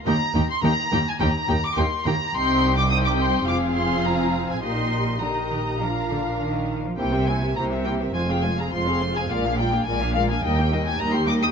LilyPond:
<<
  \new Staff \with { instrumentName = "Violin section" } { \time 4/4 \key ees \major \tempo 4 = 105 bes''8. c'''16 bes''8. aes''16 bes''8. d'''16 c'''8 bes''8 | c'''8. d'''16 ees'''16 d'''16 c'''8 d'''8 c'''8 bes''8. aes''16 | c'''4 bes''2~ bes''8 r8 | g''8 aes''8 bes''8 g''8 aes''16 g''16 aes''16 bes''16 c'''8. aes''16 |
f''8 g''8 aes''8 f''16 aes''16 g''8. aes''16 bes''16 c'''16 d'''16 ees'''16 | }
  \new Staff \with { instrumentName = "Violin section" } { \time 4/4 \key ees \major <g' g''>8 <g' g''>8 <g' g''>8 <g' g''>8 <g' g''>8 <g' g''>8 <g' g''>8 <g' g''>8 | <g' g''>4 <g' g''>4 <aes' f''>2 | <bes' ees''>4 <bes' ees''>4 <bes' f''>4.~ <bes' f''>16 r16 | <g' c''>16 <bes' e''>16 <g' c''>16 <bes' e''>16 <g' c''>16 <bes' e''>16 <g' c''>16 <bes' e''>16 <f' c''>16 <aes' f''>16 <f' c''>16 <aes' f''>16 <f' c''>16 <aes' f''>16 <f' c''>16 <aes' f''>16 |
<bes' d''>16 <aes' f''>16 <bes' d''>16 <aes' f''>16 <bes' d''>16 <aes' f''>16 <bes' d''>16 <aes' f''>16 <bes' ees''>16 <g' g''>16 <bes' ees''>16 <g' g''>16 <bes' ees''>16 <g' g''>16 <bes' ees''>16 <g' g''>16 | }
  \new Staff \with { instrumentName = "Viola section" } { \time 4/4 \key ees \major <bes ees'>8 <bes ees'>8 <bes ees'>8 <bes ees'>8 <bes ees'>8 <bes ees'>8 <bes ees'>8 <bes ees'>8 | <c' ees'>4 <c' ees'>4 <c' f'>2 | <ees' g'>4 <ees' g'>4 <d' f'>4.~ <d' f'>16 r16 | <bes e'>16 <c' g'>16 <bes e'>16 <c' g'>16 <bes e'>16 <c' g'>16 <bes e'>16 <c' g'>16 <aes f'>16 <c' aes'>16 <aes f'>16 <c' aes'>16 <aes f'>16 <c' aes'>16 <aes f'>16 <c' aes'>16 |
<aes f'>16 <bes d'>16 <aes f'>16 <bes d'>16 <aes f'>16 <bes d'>16 <aes f'>16 <bes d'>16 <g ees'>16 <bes g'>16 <g ees'>16 <bes g'>16 <g ees'>16 <bes g'>16 <g ees'>16 <bes g'>16 | }
  \new Staff \with { instrumentName = "Cello section" } { \clef bass \time 4/4 \key ees \major ees,8 ees,8 ees,8 ees,8 ees,8 ees,8 ees,8 ees,8 | c,2 f,2 | bes,4 d8 ees8 f8 d8 ees8. f16 | c4 c4 f,4 f,4 |
bes,4 bes,4 ees,4 ees,4 | }
  \new Staff \with { instrumentName = "Double bass section" } { \clef bass \time 4/4 \key ees \major ees,8 ees,8 ees,8 ees,8 ees,8 ees,8 ees,8 ees,8 | c,2 f,,2 | bes,,2.~ bes,,8 r8 | c,4 c,4 f,,4 f,,4 |
bes,,4 bes,,4 ees,4 ees,4 | }
>>